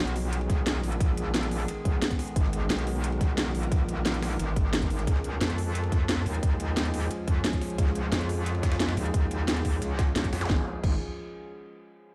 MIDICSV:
0, 0, Header, 1, 5, 480
1, 0, Start_track
1, 0, Tempo, 338983
1, 1423, Time_signature, 4, 2, 24, 8
1, 17200, End_track
2, 0, Start_track
2, 0, Title_t, "Synth drone"
2, 0, Program_c, 0, 95
2, 0, Note_on_c, 0, 51, 81
2, 0, Note_on_c, 0, 56, 75
2, 0, Note_on_c, 0, 59, 74
2, 0, Note_on_c, 0, 68, 92
2, 3305, Note_off_c, 0, 68, 0
2, 3342, Note_on_c, 0, 70, 91
2, 7127, Note_off_c, 0, 51, 0
2, 7127, Note_off_c, 0, 59, 0
2, 7144, Note_off_c, 0, 70, 0
2, 7182, Note_on_c, 0, 68, 89
2, 7183, Note_on_c, 0, 53, 85
2, 7183, Note_on_c, 0, 61, 75
2, 14806, Note_off_c, 0, 53, 0
2, 14806, Note_off_c, 0, 61, 0
2, 14806, Note_off_c, 0, 68, 0
2, 14807, Note_off_c, 0, 56, 0
2, 17200, End_track
3, 0, Start_track
3, 0, Title_t, "Wobble bass"
3, 0, Program_c, 1, 39
3, 0, Note_on_c, 1, 35, 95
3, 683, Note_off_c, 1, 35, 0
3, 702, Note_on_c, 1, 35, 94
3, 1164, Note_off_c, 1, 35, 0
3, 1183, Note_on_c, 1, 34, 100
3, 2364, Note_off_c, 1, 34, 0
3, 2622, Note_on_c, 1, 35, 96
3, 2843, Note_off_c, 1, 35, 0
3, 3342, Note_on_c, 1, 32, 98
3, 3804, Note_off_c, 1, 32, 0
3, 3823, Note_on_c, 1, 35, 94
3, 4524, Note_off_c, 1, 35, 0
3, 4542, Note_on_c, 1, 35, 93
3, 5004, Note_off_c, 1, 35, 0
3, 5022, Note_on_c, 1, 34, 96
3, 6203, Note_off_c, 1, 34, 0
3, 6223, Note_on_c, 1, 32, 99
3, 6444, Note_off_c, 1, 32, 0
3, 6462, Note_on_c, 1, 32, 99
3, 6924, Note_off_c, 1, 32, 0
3, 6944, Note_on_c, 1, 32, 101
3, 7165, Note_off_c, 1, 32, 0
3, 7183, Note_on_c, 1, 37, 97
3, 7644, Note_off_c, 1, 37, 0
3, 7664, Note_on_c, 1, 41, 96
3, 8364, Note_off_c, 1, 41, 0
3, 8383, Note_on_c, 1, 41, 96
3, 8844, Note_off_c, 1, 41, 0
3, 8863, Note_on_c, 1, 39, 96
3, 10044, Note_off_c, 1, 39, 0
3, 10303, Note_on_c, 1, 41, 94
3, 10524, Note_off_c, 1, 41, 0
3, 11022, Note_on_c, 1, 37, 96
3, 11483, Note_off_c, 1, 37, 0
3, 11503, Note_on_c, 1, 41, 97
3, 12204, Note_off_c, 1, 41, 0
3, 12222, Note_on_c, 1, 41, 97
3, 12684, Note_off_c, 1, 41, 0
3, 12701, Note_on_c, 1, 39, 98
3, 13883, Note_off_c, 1, 39, 0
3, 13903, Note_on_c, 1, 37, 97
3, 14364, Note_off_c, 1, 37, 0
3, 14383, Note_on_c, 1, 37, 98
3, 14604, Note_off_c, 1, 37, 0
3, 14622, Note_on_c, 1, 41, 95
3, 14843, Note_off_c, 1, 41, 0
3, 14862, Note_on_c, 1, 32, 97
3, 14997, Note_off_c, 1, 32, 0
3, 15343, Note_on_c, 1, 32, 96
3, 15566, Note_off_c, 1, 32, 0
3, 17200, End_track
4, 0, Start_track
4, 0, Title_t, "Zap"
4, 0, Program_c, 2, 103
4, 14743, Note_on_c, 2, 60, 65
4, 14863, Note_off_c, 2, 60, 0
4, 17200, End_track
5, 0, Start_track
5, 0, Title_t, "Drums"
5, 103, Note_on_c, 9, 42, 39
5, 222, Note_on_c, 9, 51, 71
5, 223, Note_on_c, 9, 46, 82
5, 245, Note_off_c, 9, 42, 0
5, 364, Note_off_c, 9, 51, 0
5, 365, Note_off_c, 9, 46, 0
5, 462, Note_on_c, 9, 51, 96
5, 463, Note_on_c, 9, 42, 97
5, 582, Note_off_c, 9, 51, 0
5, 582, Note_on_c, 9, 51, 45
5, 604, Note_off_c, 9, 42, 0
5, 702, Note_off_c, 9, 51, 0
5, 702, Note_on_c, 9, 36, 106
5, 702, Note_on_c, 9, 38, 47
5, 702, Note_on_c, 9, 51, 69
5, 703, Note_on_c, 9, 42, 67
5, 844, Note_off_c, 9, 36, 0
5, 844, Note_off_c, 9, 38, 0
5, 844, Note_off_c, 9, 51, 0
5, 845, Note_off_c, 9, 42, 0
5, 943, Note_on_c, 9, 38, 121
5, 943, Note_on_c, 9, 42, 99
5, 943, Note_on_c, 9, 51, 90
5, 1084, Note_off_c, 9, 38, 0
5, 1084, Note_off_c, 9, 42, 0
5, 1084, Note_off_c, 9, 51, 0
5, 1183, Note_on_c, 9, 46, 80
5, 1183, Note_on_c, 9, 51, 71
5, 1303, Note_on_c, 9, 42, 39
5, 1325, Note_off_c, 9, 46, 0
5, 1325, Note_off_c, 9, 51, 0
5, 1422, Note_on_c, 9, 36, 125
5, 1423, Note_off_c, 9, 42, 0
5, 1423, Note_on_c, 9, 42, 102
5, 1423, Note_on_c, 9, 51, 86
5, 1564, Note_off_c, 9, 36, 0
5, 1565, Note_off_c, 9, 42, 0
5, 1565, Note_off_c, 9, 51, 0
5, 1663, Note_on_c, 9, 42, 71
5, 1663, Note_on_c, 9, 51, 70
5, 1805, Note_off_c, 9, 42, 0
5, 1805, Note_off_c, 9, 51, 0
5, 1903, Note_on_c, 9, 38, 127
5, 1903, Note_on_c, 9, 42, 99
5, 1903, Note_on_c, 9, 51, 89
5, 2023, Note_off_c, 9, 42, 0
5, 2023, Note_on_c, 9, 42, 39
5, 2044, Note_off_c, 9, 51, 0
5, 2045, Note_off_c, 9, 38, 0
5, 2143, Note_on_c, 9, 51, 69
5, 2144, Note_on_c, 9, 46, 78
5, 2165, Note_off_c, 9, 42, 0
5, 2264, Note_on_c, 9, 38, 45
5, 2285, Note_off_c, 9, 51, 0
5, 2286, Note_off_c, 9, 46, 0
5, 2383, Note_on_c, 9, 51, 94
5, 2384, Note_on_c, 9, 42, 94
5, 2406, Note_off_c, 9, 38, 0
5, 2525, Note_off_c, 9, 42, 0
5, 2525, Note_off_c, 9, 51, 0
5, 2622, Note_on_c, 9, 36, 108
5, 2623, Note_on_c, 9, 51, 67
5, 2624, Note_on_c, 9, 42, 66
5, 2764, Note_off_c, 9, 36, 0
5, 2765, Note_off_c, 9, 42, 0
5, 2765, Note_off_c, 9, 51, 0
5, 2863, Note_on_c, 9, 38, 124
5, 2863, Note_on_c, 9, 42, 101
5, 2863, Note_on_c, 9, 51, 80
5, 2982, Note_on_c, 9, 36, 67
5, 2983, Note_off_c, 9, 42, 0
5, 2983, Note_off_c, 9, 51, 0
5, 2983, Note_on_c, 9, 42, 40
5, 2983, Note_on_c, 9, 51, 41
5, 3005, Note_off_c, 9, 38, 0
5, 3103, Note_off_c, 9, 51, 0
5, 3103, Note_on_c, 9, 38, 42
5, 3103, Note_on_c, 9, 46, 76
5, 3103, Note_on_c, 9, 51, 63
5, 3124, Note_off_c, 9, 36, 0
5, 3125, Note_off_c, 9, 42, 0
5, 3223, Note_on_c, 9, 42, 39
5, 3244, Note_off_c, 9, 38, 0
5, 3244, Note_off_c, 9, 51, 0
5, 3245, Note_off_c, 9, 46, 0
5, 3342, Note_on_c, 9, 36, 127
5, 3342, Note_on_c, 9, 51, 89
5, 3343, Note_off_c, 9, 42, 0
5, 3343, Note_on_c, 9, 42, 102
5, 3463, Note_on_c, 9, 38, 44
5, 3484, Note_off_c, 9, 36, 0
5, 3484, Note_off_c, 9, 51, 0
5, 3485, Note_off_c, 9, 42, 0
5, 3583, Note_on_c, 9, 42, 71
5, 3583, Note_on_c, 9, 51, 66
5, 3604, Note_off_c, 9, 38, 0
5, 3724, Note_off_c, 9, 51, 0
5, 3725, Note_off_c, 9, 42, 0
5, 3823, Note_on_c, 9, 38, 127
5, 3823, Note_on_c, 9, 42, 96
5, 3823, Note_on_c, 9, 51, 91
5, 3943, Note_off_c, 9, 42, 0
5, 3943, Note_on_c, 9, 42, 39
5, 3964, Note_off_c, 9, 51, 0
5, 3965, Note_off_c, 9, 38, 0
5, 4063, Note_on_c, 9, 46, 78
5, 4063, Note_on_c, 9, 51, 70
5, 4085, Note_off_c, 9, 42, 0
5, 4204, Note_off_c, 9, 46, 0
5, 4204, Note_off_c, 9, 51, 0
5, 4303, Note_on_c, 9, 42, 93
5, 4303, Note_on_c, 9, 51, 93
5, 4423, Note_off_c, 9, 51, 0
5, 4423, Note_on_c, 9, 51, 45
5, 4445, Note_off_c, 9, 42, 0
5, 4542, Note_on_c, 9, 36, 112
5, 4543, Note_off_c, 9, 51, 0
5, 4543, Note_on_c, 9, 38, 45
5, 4543, Note_on_c, 9, 42, 65
5, 4543, Note_on_c, 9, 51, 67
5, 4684, Note_off_c, 9, 36, 0
5, 4685, Note_off_c, 9, 38, 0
5, 4685, Note_off_c, 9, 42, 0
5, 4685, Note_off_c, 9, 51, 0
5, 4783, Note_on_c, 9, 38, 127
5, 4783, Note_on_c, 9, 42, 96
5, 4783, Note_on_c, 9, 51, 90
5, 4925, Note_off_c, 9, 38, 0
5, 4925, Note_off_c, 9, 42, 0
5, 4925, Note_off_c, 9, 51, 0
5, 5023, Note_on_c, 9, 46, 73
5, 5023, Note_on_c, 9, 51, 68
5, 5143, Note_on_c, 9, 42, 38
5, 5165, Note_off_c, 9, 46, 0
5, 5165, Note_off_c, 9, 51, 0
5, 5262, Note_on_c, 9, 36, 123
5, 5263, Note_off_c, 9, 42, 0
5, 5263, Note_on_c, 9, 42, 97
5, 5264, Note_on_c, 9, 51, 86
5, 5404, Note_off_c, 9, 36, 0
5, 5404, Note_off_c, 9, 42, 0
5, 5405, Note_off_c, 9, 51, 0
5, 5502, Note_on_c, 9, 42, 66
5, 5504, Note_on_c, 9, 51, 71
5, 5644, Note_off_c, 9, 42, 0
5, 5645, Note_off_c, 9, 51, 0
5, 5742, Note_on_c, 9, 38, 124
5, 5742, Note_on_c, 9, 42, 93
5, 5743, Note_off_c, 9, 38, 0
5, 5743, Note_on_c, 9, 38, 123
5, 5743, Note_on_c, 9, 51, 90
5, 5863, Note_off_c, 9, 42, 0
5, 5863, Note_on_c, 9, 42, 37
5, 5885, Note_off_c, 9, 38, 0
5, 5885, Note_off_c, 9, 51, 0
5, 5983, Note_on_c, 9, 38, 108
5, 5983, Note_on_c, 9, 46, 76
5, 5983, Note_on_c, 9, 51, 83
5, 6005, Note_off_c, 9, 42, 0
5, 6104, Note_off_c, 9, 38, 0
5, 6104, Note_on_c, 9, 38, 45
5, 6125, Note_off_c, 9, 46, 0
5, 6125, Note_off_c, 9, 51, 0
5, 6223, Note_on_c, 9, 42, 91
5, 6223, Note_on_c, 9, 51, 91
5, 6245, Note_off_c, 9, 38, 0
5, 6365, Note_off_c, 9, 42, 0
5, 6365, Note_off_c, 9, 51, 0
5, 6462, Note_on_c, 9, 36, 108
5, 6464, Note_on_c, 9, 42, 65
5, 6464, Note_on_c, 9, 51, 71
5, 6604, Note_off_c, 9, 36, 0
5, 6605, Note_off_c, 9, 42, 0
5, 6605, Note_off_c, 9, 51, 0
5, 6703, Note_on_c, 9, 38, 118
5, 6703, Note_on_c, 9, 51, 92
5, 6704, Note_off_c, 9, 38, 0
5, 6704, Note_on_c, 9, 38, 127
5, 6704, Note_on_c, 9, 42, 94
5, 6822, Note_on_c, 9, 36, 63
5, 6824, Note_off_c, 9, 42, 0
5, 6824, Note_on_c, 9, 42, 37
5, 6845, Note_off_c, 9, 38, 0
5, 6845, Note_off_c, 9, 51, 0
5, 6944, Note_on_c, 9, 46, 76
5, 6944, Note_on_c, 9, 51, 71
5, 6964, Note_off_c, 9, 36, 0
5, 6966, Note_off_c, 9, 42, 0
5, 7064, Note_on_c, 9, 38, 37
5, 7064, Note_on_c, 9, 42, 38
5, 7085, Note_off_c, 9, 46, 0
5, 7085, Note_off_c, 9, 51, 0
5, 7183, Note_on_c, 9, 36, 116
5, 7184, Note_off_c, 9, 42, 0
5, 7184, Note_on_c, 9, 42, 93
5, 7184, Note_on_c, 9, 51, 86
5, 7206, Note_off_c, 9, 38, 0
5, 7304, Note_on_c, 9, 38, 47
5, 7324, Note_off_c, 9, 36, 0
5, 7325, Note_off_c, 9, 42, 0
5, 7325, Note_off_c, 9, 51, 0
5, 7424, Note_on_c, 9, 42, 64
5, 7424, Note_on_c, 9, 51, 69
5, 7445, Note_off_c, 9, 38, 0
5, 7565, Note_off_c, 9, 51, 0
5, 7566, Note_off_c, 9, 42, 0
5, 7663, Note_on_c, 9, 38, 124
5, 7663, Note_on_c, 9, 51, 92
5, 7664, Note_off_c, 9, 38, 0
5, 7664, Note_on_c, 9, 38, 120
5, 7664, Note_on_c, 9, 42, 93
5, 7784, Note_off_c, 9, 42, 0
5, 7784, Note_on_c, 9, 42, 36
5, 7805, Note_off_c, 9, 51, 0
5, 7806, Note_off_c, 9, 38, 0
5, 7903, Note_on_c, 9, 46, 83
5, 7904, Note_on_c, 9, 51, 71
5, 7925, Note_off_c, 9, 42, 0
5, 8045, Note_off_c, 9, 46, 0
5, 8045, Note_off_c, 9, 51, 0
5, 8143, Note_on_c, 9, 51, 92
5, 8144, Note_on_c, 9, 42, 90
5, 8264, Note_off_c, 9, 51, 0
5, 8264, Note_on_c, 9, 51, 45
5, 8286, Note_off_c, 9, 42, 0
5, 8383, Note_on_c, 9, 36, 106
5, 8384, Note_off_c, 9, 51, 0
5, 8384, Note_on_c, 9, 38, 47
5, 8384, Note_on_c, 9, 42, 62
5, 8384, Note_on_c, 9, 51, 68
5, 8524, Note_off_c, 9, 36, 0
5, 8526, Note_off_c, 9, 38, 0
5, 8526, Note_off_c, 9, 42, 0
5, 8526, Note_off_c, 9, 51, 0
5, 8623, Note_on_c, 9, 38, 117
5, 8623, Note_on_c, 9, 51, 91
5, 8624, Note_off_c, 9, 38, 0
5, 8624, Note_on_c, 9, 38, 124
5, 8624, Note_on_c, 9, 42, 89
5, 8765, Note_off_c, 9, 51, 0
5, 8766, Note_off_c, 9, 38, 0
5, 8766, Note_off_c, 9, 42, 0
5, 8864, Note_on_c, 9, 46, 81
5, 8864, Note_on_c, 9, 51, 70
5, 8984, Note_on_c, 9, 42, 36
5, 9005, Note_off_c, 9, 51, 0
5, 9006, Note_off_c, 9, 46, 0
5, 9102, Note_on_c, 9, 36, 114
5, 9103, Note_on_c, 9, 51, 88
5, 9104, Note_off_c, 9, 42, 0
5, 9104, Note_on_c, 9, 42, 91
5, 9244, Note_off_c, 9, 36, 0
5, 9245, Note_off_c, 9, 42, 0
5, 9245, Note_off_c, 9, 51, 0
5, 9343, Note_on_c, 9, 42, 63
5, 9343, Note_on_c, 9, 51, 67
5, 9485, Note_off_c, 9, 42, 0
5, 9485, Note_off_c, 9, 51, 0
5, 9583, Note_on_c, 9, 38, 119
5, 9583, Note_on_c, 9, 42, 90
5, 9583, Note_on_c, 9, 51, 92
5, 9703, Note_off_c, 9, 42, 0
5, 9703, Note_on_c, 9, 42, 36
5, 9725, Note_off_c, 9, 38, 0
5, 9725, Note_off_c, 9, 51, 0
5, 9823, Note_on_c, 9, 46, 83
5, 9824, Note_on_c, 9, 51, 71
5, 9845, Note_off_c, 9, 42, 0
5, 9943, Note_on_c, 9, 38, 44
5, 9965, Note_off_c, 9, 46, 0
5, 9965, Note_off_c, 9, 51, 0
5, 10063, Note_on_c, 9, 42, 85
5, 10063, Note_on_c, 9, 51, 90
5, 10085, Note_off_c, 9, 38, 0
5, 10204, Note_off_c, 9, 42, 0
5, 10205, Note_off_c, 9, 51, 0
5, 10302, Note_on_c, 9, 36, 103
5, 10303, Note_on_c, 9, 42, 63
5, 10303, Note_on_c, 9, 51, 69
5, 10444, Note_off_c, 9, 36, 0
5, 10444, Note_off_c, 9, 42, 0
5, 10445, Note_off_c, 9, 51, 0
5, 10543, Note_on_c, 9, 38, 120
5, 10543, Note_on_c, 9, 42, 90
5, 10543, Note_on_c, 9, 51, 81
5, 10662, Note_on_c, 9, 36, 59
5, 10663, Note_off_c, 9, 42, 0
5, 10663, Note_off_c, 9, 51, 0
5, 10663, Note_on_c, 9, 42, 37
5, 10663, Note_on_c, 9, 51, 42
5, 10684, Note_off_c, 9, 38, 0
5, 10783, Note_off_c, 9, 51, 0
5, 10783, Note_on_c, 9, 38, 41
5, 10783, Note_on_c, 9, 46, 81
5, 10783, Note_on_c, 9, 51, 62
5, 10804, Note_off_c, 9, 36, 0
5, 10805, Note_off_c, 9, 42, 0
5, 10903, Note_on_c, 9, 42, 36
5, 10924, Note_off_c, 9, 38, 0
5, 10924, Note_off_c, 9, 51, 0
5, 10925, Note_off_c, 9, 46, 0
5, 11022, Note_on_c, 9, 36, 115
5, 11023, Note_off_c, 9, 42, 0
5, 11023, Note_on_c, 9, 42, 96
5, 11023, Note_on_c, 9, 51, 88
5, 11143, Note_on_c, 9, 38, 45
5, 11164, Note_off_c, 9, 36, 0
5, 11164, Note_off_c, 9, 51, 0
5, 11165, Note_off_c, 9, 42, 0
5, 11263, Note_on_c, 9, 42, 67
5, 11263, Note_on_c, 9, 51, 69
5, 11285, Note_off_c, 9, 38, 0
5, 11404, Note_off_c, 9, 42, 0
5, 11404, Note_off_c, 9, 51, 0
5, 11503, Note_on_c, 9, 38, 122
5, 11503, Note_on_c, 9, 42, 93
5, 11503, Note_on_c, 9, 51, 92
5, 11623, Note_off_c, 9, 42, 0
5, 11623, Note_on_c, 9, 42, 38
5, 11644, Note_off_c, 9, 38, 0
5, 11644, Note_off_c, 9, 51, 0
5, 11742, Note_on_c, 9, 51, 70
5, 11743, Note_on_c, 9, 46, 84
5, 11764, Note_off_c, 9, 42, 0
5, 11884, Note_off_c, 9, 51, 0
5, 11885, Note_off_c, 9, 46, 0
5, 11982, Note_on_c, 9, 51, 90
5, 11983, Note_on_c, 9, 42, 90
5, 12103, Note_off_c, 9, 51, 0
5, 12103, Note_on_c, 9, 51, 44
5, 12125, Note_off_c, 9, 42, 0
5, 12222, Note_on_c, 9, 36, 100
5, 12223, Note_off_c, 9, 51, 0
5, 12223, Note_on_c, 9, 38, 106
5, 12223, Note_on_c, 9, 42, 65
5, 12223, Note_on_c, 9, 51, 82
5, 12343, Note_off_c, 9, 38, 0
5, 12343, Note_off_c, 9, 51, 0
5, 12343, Note_on_c, 9, 38, 105
5, 12343, Note_on_c, 9, 51, 82
5, 12364, Note_off_c, 9, 36, 0
5, 12365, Note_off_c, 9, 42, 0
5, 12463, Note_off_c, 9, 38, 0
5, 12463, Note_off_c, 9, 51, 0
5, 12463, Note_on_c, 9, 38, 115
5, 12463, Note_on_c, 9, 42, 91
5, 12463, Note_on_c, 9, 51, 80
5, 12583, Note_off_c, 9, 38, 0
5, 12583, Note_off_c, 9, 51, 0
5, 12583, Note_on_c, 9, 38, 105
5, 12583, Note_on_c, 9, 51, 84
5, 12605, Note_off_c, 9, 42, 0
5, 12703, Note_off_c, 9, 51, 0
5, 12703, Note_on_c, 9, 46, 84
5, 12703, Note_on_c, 9, 51, 69
5, 12724, Note_off_c, 9, 38, 0
5, 12823, Note_on_c, 9, 42, 37
5, 12844, Note_off_c, 9, 46, 0
5, 12845, Note_off_c, 9, 51, 0
5, 12942, Note_on_c, 9, 36, 117
5, 12943, Note_off_c, 9, 42, 0
5, 12943, Note_on_c, 9, 42, 98
5, 12943, Note_on_c, 9, 51, 89
5, 13084, Note_off_c, 9, 36, 0
5, 13084, Note_off_c, 9, 42, 0
5, 13085, Note_off_c, 9, 51, 0
5, 13183, Note_on_c, 9, 42, 69
5, 13183, Note_on_c, 9, 51, 68
5, 13325, Note_off_c, 9, 42, 0
5, 13325, Note_off_c, 9, 51, 0
5, 13423, Note_on_c, 9, 38, 122
5, 13423, Note_on_c, 9, 42, 98
5, 13423, Note_on_c, 9, 51, 90
5, 13544, Note_off_c, 9, 42, 0
5, 13544, Note_on_c, 9, 42, 38
5, 13564, Note_off_c, 9, 51, 0
5, 13565, Note_off_c, 9, 38, 0
5, 13662, Note_on_c, 9, 36, 60
5, 13663, Note_on_c, 9, 46, 87
5, 13663, Note_on_c, 9, 51, 79
5, 13685, Note_off_c, 9, 42, 0
5, 13783, Note_off_c, 9, 51, 0
5, 13783, Note_on_c, 9, 51, 41
5, 13804, Note_off_c, 9, 36, 0
5, 13805, Note_off_c, 9, 46, 0
5, 13903, Note_off_c, 9, 51, 0
5, 13903, Note_on_c, 9, 38, 43
5, 13903, Note_on_c, 9, 42, 91
5, 13903, Note_on_c, 9, 51, 66
5, 14044, Note_off_c, 9, 38, 0
5, 14044, Note_off_c, 9, 51, 0
5, 14045, Note_off_c, 9, 42, 0
5, 14143, Note_on_c, 9, 36, 101
5, 14143, Note_on_c, 9, 38, 104
5, 14143, Note_on_c, 9, 51, 80
5, 14144, Note_on_c, 9, 42, 65
5, 14284, Note_off_c, 9, 36, 0
5, 14285, Note_off_c, 9, 38, 0
5, 14285, Note_off_c, 9, 42, 0
5, 14285, Note_off_c, 9, 51, 0
5, 14383, Note_on_c, 9, 51, 63
5, 14384, Note_on_c, 9, 38, 116
5, 14384, Note_on_c, 9, 42, 95
5, 14503, Note_on_c, 9, 36, 58
5, 14504, Note_off_c, 9, 42, 0
5, 14504, Note_on_c, 9, 42, 39
5, 14525, Note_off_c, 9, 38, 0
5, 14525, Note_off_c, 9, 51, 0
5, 14624, Note_on_c, 9, 38, 104
5, 14624, Note_on_c, 9, 46, 83
5, 14624, Note_on_c, 9, 51, 80
5, 14644, Note_off_c, 9, 36, 0
5, 14645, Note_off_c, 9, 42, 0
5, 14744, Note_off_c, 9, 38, 0
5, 14744, Note_off_c, 9, 51, 0
5, 14744, Note_on_c, 9, 38, 92
5, 14744, Note_on_c, 9, 42, 38
5, 14744, Note_on_c, 9, 51, 70
5, 14765, Note_off_c, 9, 46, 0
5, 14804, Note_off_c, 9, 38, 0
5, 14804, Note_off_c, 9, 51, 0
5, 14804, Note_on_c, 9, 38, 88
5, 14804, Note_on_c, 9, 51, 72
5, 14863, Note_on_c, 9, 36, 113
5, 14864, Note_off_c, 9, 38, 0
5, 14864, Note_on_c, 9, 38, 90
5, 14885, Note_off_c, 9, 42, 0
5, 14946, Note_off_c, 9, 51, 0
5, 15004, Note_off_c, 9, 36, 0
5, 15005, Note_off_c, 9, 38, 0
5, 15343, Note_on_c, 9, 36, 110
5, 15344, Note_on_c, 9, 49, 92
5, 15485, Note_off_c, 9, 36, 0
5, 15486, Note_off_c, 9, 49, 0
5, 17200, End_track
0, 0, End_of_file